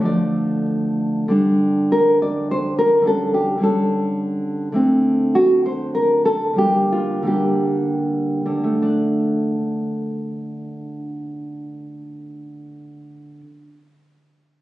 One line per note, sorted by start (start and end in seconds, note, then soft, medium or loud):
0.01 1.25 D3 soft
0.01 1.26 F3 soft
0.01 1.27 A3 soft
0.05 0.65 D5 soft
1.28 3.00 D3 soft
1.28 3.03 G3 soft
1.28 3.03 D4 soft
1.92 2.21 A#4 medium
2.22 2.50 D5 medium
2.51 2.78 C5 medium
2.79 3.06 A#4 medium
3.02 3.57 D3 soft
3.02 3.59 G3 soft
3.02 3.60 C#4 soft
3.07 3.34 A4 medium
3.34 3.61 G4 medium
3.58 4.71 D3 soft
3.58 4.73 G3 soft
3.58 4.73 C#4 soft
3.63 4.74 A4 medium
4.72 6.52 D3 soft
4.72 6.53 A3 soft
4.72 6.54 C4 soft
5.35 5.64 F#4 medium
5.66 5.94 C5 medium
5.95 6.25 A#4 medium
6.25 6.57 A4 medium
6.53 7.21 D3 soft
6.53 7.23 G3 soft
6.58 7.24 A#3 soft
6.58 6.91 G4 medium
6.92 7.26 F4 medium
7.23 8.45 D3 soft
7.23 8.76 G3 soft
7.23 8.63 A#3 soft
7.27 8.78 G4 medium
8.46 13.40 D3 soft
8.64 13.58 A3 soft
8.82 13.77 D4 soft